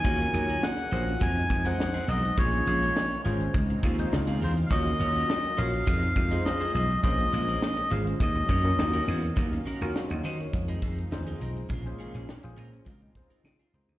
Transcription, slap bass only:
\new Staff \with { instrumentName = "Slap bass" } { \clef bass \time 4/4 \key ees \dorian \tempo 4 = 103 ees,8 ees,8 r8 bes,,8 f,8 f,8 r8 ces,8 | bes,,8 bes,,8 r8 aes,,8 des,8 ees,8 des,8 fes,8 | ees,8 ees,8 r8 bes,,8 f,8 f,8 r8 ces,8 | bes,,8 bes,,8 r8 aes,,8 ees,8 ges,8 ees,8 fes,8 |
ees,8 r16 ees,16 r16 ees,16 ees8 f,8 f,8 ees,8 ces,8 | bes,,8 r16 bes,,16 r16 bes,,16 bes,8 des,8 r8 des16 r16 des,16 d,16 | }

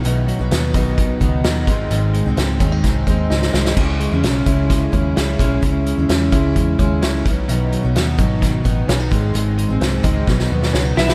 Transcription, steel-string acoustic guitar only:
\new Staff \with { instrumentName = "Steel-string acoustic guitar" } { \time 4/4 \key cis \minor \tempo 4 = 129 <dis fis b dis'>8. <fis b dis'>8. <b, dis fis b dis'>4 <dis fis b dis'>4 <dis gis bis dis'>8 | <dis gis bis dis'>8. <gis bis dis'>8. <gis, dis gis bis dis'>4 <dis gis bis dis'>4 <dis gis bis dis'>8 | <cis gis cis' e'>8. <gis cis' e'>8. <cis gis cis' e'>4 <cis gis cis' e'>4 <cis gis cis' e'>8 | <cis gis cis' e'>8. <gis cis' e'>8. <cis gis cis' e'>4 <cis gis cis' e'>4 <dis fis b dis'>8 |
<dis fis b dis'>8. <fis b dis'>8. <b, dis fis b dis'>4 <dis fis b dis'>4 <dis gis bis dis'>8 | <dis gis bis dis'>8. <gis bis dis'>8. <gis, dis gis bis dis'>8 <b, dis fis b dis'>8 <dis fis b dis'>4 <dis fis b dis'>8 | }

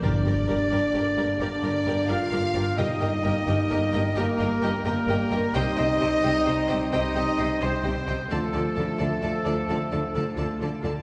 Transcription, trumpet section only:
\new Staff \with { instrumentName = "Trumpet section" } { \time 12/8 \key g \minor \tempo 4. = 87 d''2. d''4. f''4. | ees''2. bes'4. bes'4. | ees''2. ees''4. c''4. | a'1~ a'4. r8 | }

